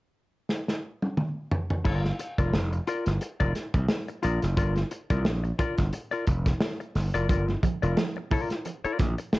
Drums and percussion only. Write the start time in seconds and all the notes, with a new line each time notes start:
0.49 snare
0.68 snare
1.02 high tom
1.17 mid tom
1.51 floor tom
1.70 floor tom
1.85 kick, crash
2.05 snare
2.19 closed hi-hat
2.38 kick, closed hi-hat
2.53 snare
2.73 closed hi-hat
2.87 closed hi-hat
3.06 snare, closed hi-hat
3.21 closed hi-hat
3.40 kick, closed hi-hat
3.55 snare, closed hi-hat
3.74 kick, closed hi-hat
3.88 snare
4.08 closed hi-hat
4.23 closed hi-hat
4.42 snare, closed hi-hat
4.57 kick, closed hi-hat
4.75 snare, closed hi-hat
4.91 closed hi-hat
5.10 kick, closed hi-hat
5.25 snare
5.45 closed hi-hat
5.59 kick, closed hi-hat
5.78 kick, snare, closed hi-hat
5.93 closed hi-hat
6.12 closed hi-hat
6.27 kick, closed hi-hat
6.46 kick, snare, closed hi-hat
6.61 snare
6.80 closed hi-hat
6.95 snare, open hi-hat
7.15 closed hi-hat
7.29 kick, closed hi-hat, muted conga
7.49 snare, muted conga
7.63 kick, closed hi-hat, high conga
7.83 closed hi-hat
7.97 snare, muted conga, high conga
8.16 muted conga
8.31 kick, open hi-hat, low conga
8.50 snare, closed hi-hat
8.65 closed hi-hat, muted conga
8.85 closed hi-hat
8.99 kick, snare, closed hi-hat, high conga
9.18 closed hi-hat
9.33 snare, muted conga